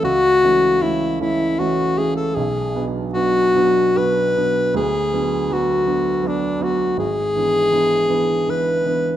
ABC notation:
X:1
M:3/4
L:1/16
Q:1/4=79
K:Bdor
V:1 name="Alto saxophone"
F4 E2 E2 F2 G A | G3 z F4 B4 | G4 F4 D2 F2 | G8 B4 |]
V:2 name="Grand piano"
C,,2 [E,A,C]2 [E,A,C]2 [E,A,C]2 [E,A,C]2 [E,A,C]2 | B,,,2 [F,B,D]2 [F,B,D]2 [F,B,D]2 [F,B,D]2 [F,B,D]2 | D,,2 [F,B,D]2 [F,B,D]2 [F,B,D]2 [F,B,D]2 [F,B,D]2 | G,,,2 [E,B,D]2 [E,B,D]2 [E,B,D]2 [E,B,D]2 [E,B,D]2 |]